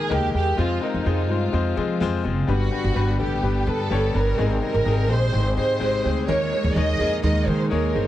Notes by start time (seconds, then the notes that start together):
Already playing: A#2 D#3 G#3 A#3 D#4 G#4 A#4
0.10 D#2 G#3 A#3 D#4 G4 G#4 A#4
0.34 E2 G#3 A#3 D#4 G4 G#4 A#4
0.57 F2 C3 G#3 C4 F4 G#4 C5
0.81 G#3 C4 D#4 F4 G#4 A#4
0.94 F2
1.04 F2 G#3 C4 F4 G#4 C5
1.29 G2 G#3 C4 F4 G#4 C5
1.52 F2 G#3 C4 F4 G#4 C5
1.76 F3 G#3 C4 F4 G#4 C5
2.00 F2 G#3 C4 F4 G#4 C5
2.24 F#1 G#3 C4 F4 G#4 C5
2.47 G1 G2 D3 G3 B3 D4 F#4 G4 B4
2.71 G3 B3 D4 G4 B4
2.84 G1
2.95 G1 G3 B3 D4 G4 B4
3.18 A1 G3 B3 D4 G4 A4
3.42 G1 G3 B3 D4 G4 B4
3.67 G2 G3 B3 D4 G4 A4 B4
3.90 G1 G3 B3 D4 G4 C#5
4.14 G1 G3 B3 D4 G4 A#4 B4
4.38 G#1 G#2 C3 D#3 G#3 C4 D#4 G4 G#4
4.61 G#3 C4 D#4 G4 G#4 A#4
4.74 G#1
4.85 G#1 G#3 C4 D#4 G4 G#4
5.08 A#1 G#3 C4 D#4 G4 G#4 C5
5.32 G#1 G#3 C4 D#4 G4 G#4
5.56 G#2 G#3 C4 D#4 G4 G#4 C5
5.79 G#1 G#3 C4 D#4 G4 G#4
6.04 D2 G#3 C4 D#4 G4 G#4
6.28 D#2 A#2 D#3 G#3 A#3 D#4 G#4 A#4 C#5
6.52 G#3 A#3 D#4 G#4 A#4
6.64 D#2
6.75 D#2 G#3 A#3 D#4 G#4 C#5 D#5
6.99 F2 G#3 A#3 D#4 G#4 A#4
7.23 D#2 D#3 G#3 A#3 D#4 G#4 A#4 D#5
7.46 D#3 G#3 A#3 D#4 G#4 A#4 C5
7.70 D#2 G#3 A#3 D#4 G#4 A#4 C#5
7.94 G1 G#3 A#3 D#4 G#4 C5